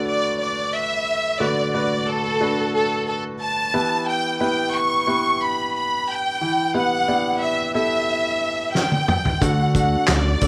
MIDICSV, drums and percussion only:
0, 0, Header, 1, 2, 480
1, 0, Start_track
1, 0, Tempo, 667408
1, 1011, Time_signature, 4, 2, 24, 8
1, 7534, End_track
2, 0, Start_track
2, 0, Title_t, "Drums"
2, 6293, Note_on_c, 9, 38, 52
2, 6365, Note_off_c, 9, 38, 0
2, 6413, Note_on_c, 9, 48, 45
2, 6485, Note_off_c, 9, 48, 0
2, 6533, Note_on_c, 9, 45, 74
2, 6605, Note_off_c, 9, 45, 0
2, 6654, Note_on_c, 9, 43, 76
2, 6726, Note_off_c, 9, 43, 0
2, 6772, Note_on_c, 9, 42, 82
2, 6773, Note_on_c, 9, 36, 73
2, 6844, Note_off_c, 9, 42, 0
2, 6845, Note_off_c, 9, 36, 0
2, 7011, Note_on_c, 9, 36, 73
2, 7015, Note_on_c, 9, 42, 58
2, 7083, Note_off_c, 9, 36, 0
2, 7087, Note_off_c, 9, 42, 0
2, 7246, Note_on_c, 9, 39, 74
2, 7251, Note_on_c, 9, 38, 98
2, 7252, Note_on_c, 9, 42, 63
2, 7318, Note_off_c, 9, 39, 0
2, 7323, Note_off_c, 9, 38, 0
2, 7324, Note_off_c, 9, 42, 0
2, 7488, Note_on_c, 9, 42, 67
2, 7492, Note_on_c, 9, 36, 76
2, 7534, Note_off_c, 9, 36, 0
2, 7534, Note_off_c, 9, 42, 0
2, 7534, End_track
0, 0, End_of_file